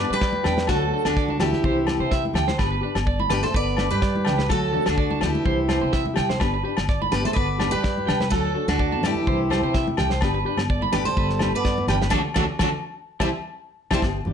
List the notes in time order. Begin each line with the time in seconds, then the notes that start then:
Already playing: G4 D5
0.00 D4
0.10 G3 G4 B4
0.21 D5, kick, snare
0.33 high conga
0.43 E2 D4 G4 G5, snare, low conga, low agogo
0.57 snare, high conga
0.66 D2 A3 D4 F#4 A4, kick, snare, low agogo
0.71 F#3
0.82 A4
0.94 D4 A4
1.05 D2 D3 D4 F#4, snare, low agogo
1.17 D5, kick, snare
1.28 A5, high conga
1.39 D2 E3 D4 E4 F#4 G4, snare, low conga, low agogo
1.53 snare, high conga
1.64 C2 E3 C4 E4 G4 C5, kick
1.87 E4 G4, muted clean electric guitar stroke, snare, high conga, low agogo
1.91 C4
1.99 C3 C5
2.11 E5, kick, snare
2.25 high conga
2.33 D2 C4 E4 G4 G5, snare, low conga, low agogo
2.48 C5, snare, high conga
2.59 G1 B3 D4 G4 B4, kick, snare, low agogo
2.72 B4
2.81 D4 G4 B4
2.95 G1, snare, low agogo
3.07 D5, kick
3.19 B5, high conga
3.30 G1 G3 D4 G4 B4, snare, low conga, low agogo
3.43 A3 A4 C5, snare, high conga
3.54 G1 B3 B4 D5, kick
3.77 D4 B4, snare, high conga, low agogo
3.91 G2 G3 G4 B4
4.02 D5, kick, snare
4.16 high conga
4.24 C#2 D4 G4 G5, snare, low conga, low agogo
4.38 B4, snare, high conga
4.48 D2 F#3 A3 F#4 A4, muted nylon-string guitar stroke, kick, snare, low agogo
4.52 F#3 F#4
4.62 A4
4.71 A3 D4 F#4 A4, low conga
4.86 D2 D3 D4 F#4, snare, low agogo
4.98 D5, kick
5.11 A5, high conga
5.19 D2 A3 D4 E4 F#4, snare, low conga, low agogo
5.24 E3 G4
5.35 high conga
5.43 C2 E3 C4 E4 G4 C5, kick
5.67 C4 G4 C5, muted nylon-string guitar stroke, snare, high conga, low agogo
5.81 C3 C5
5.93 E5, kick, snare
6.06 high conga
6.14 C2 C4 E4 G4 G5, snare, low conga, low agogo
6.29 C5, snare, high conga
6.39 G1 B3 D4 G4 B4, kick, snare, low agogo
6.54 B4
6.63 D4 G4 B4
6.77 G1, snare, low agogo
6.89 D5, kick, snare
7.02 B5, high conga
7.11 G1 G3 D4 G4 B4, snare, low conga, low agogo
7.24 A3 A4 C5, high conga
7.33 G1 B3 B4 D5, kick
7.58 D4 G4 B4, snare, high conga, low agogo
7.71 G2 G3 G4 B4
7.84 D5, kick, snare
7.98 high conga
8.06 C2 D4 G4 G5, snare, low conga, low agogo
8.20 B4, snare, high conga
8.30 D2 F#3 D4 F#4 A4, muted nylon-string guitar stroke, kick, snare, low agogo
8.35 F#3
8.45 A4
8.54 D4 F#4 A4
8.58 A3
8.68 D2 D3 D4 F#4, snare, low agogo
8.79 D5, kick
8.92 A5, high conga
9.02 G2 E3 D4 E4 G4, snare, low conga, low agogo
9.06 A3
9.15 high conga
9.27 C2 E3 C4 E4 G4 C5, kick
9.50 E4 G4 C5, snare, high conga, low agogo
9.54 C4
9.62 C3 C5
9.74 E5, kick, snare
9.87 high conga
9.97 C2 C4 E4 G4 G5, snare, low conga, low agogo
10.10 C5, snare, high conga
10.21 G1 B3 D4 G4 B4, kick, snare, low agogo
10.34 B4
10.45 D4 G4 B4
10.57 G1, snare, low agogo
10.70 D5, kick
10.82 B5, high conga
10.92 G1 G3 D4 G4 B4, snare, low conga, low agogo
11.05 G3 A4 C5, high conga
11.17 G1 B4, kick
11.29 snare
11.39 G4 B4, snare, high conga, low agogo
11.44 D4
11.52 G2 B3 B4 D5
11.65 D5, kick, snare
11.78 high conga
11.88 G1 G4 B4 G5, snare, low conga, low agogo
11.92 G3 D4
12.02 B4, snare, high conga
12.10 D2 A3 D4 F#4 A4 D5, kick, snare, low conga, low agogo
12.15 F#3
12.34 D2 A3 D4 F#4 A4 D5, kick, snare, low conga, low agogo
12.39 F#3
12.59 D2 F#3 A3 D4 F#4 A4 D5, kick, snare, low conga, low agogo
13.20 C2 G3 C4 E4 G4 C5 E5, kick, snare, low conga, low agogo
13.91 C2 G3 C4 E4 G4 C5 E5, kick, snare, low conga, low agogo
14.02 G1 B3 G4, muted nylon-string guitar stroke, kick, snare, low agogo
14.25 G1 G4, low conga
14.30 D4